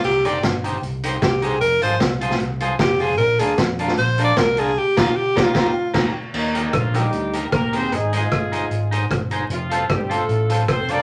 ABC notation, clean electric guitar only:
X:1
M:4/4
L:1/8
Q:"Swing" 1/4=152
K:Eb
V:1 name="Clean electric guitar"
z [EGc] z [EGc] z [EGc] z [EGc] | z [FAc] z [FAc] z [FAc] z [FAc] | z [DFB] z [DFB] z [DFB] z [DFB] | z [EGB] z [EGB] [EGB] z [EGB] z |
z [EGB] z [EGB] z [EGB] z [EGB] | z [EAc] z [EAc] z [EAc] z [EAc] | z [F=Ac] z [FAc] z [FAc] z [FAc] |]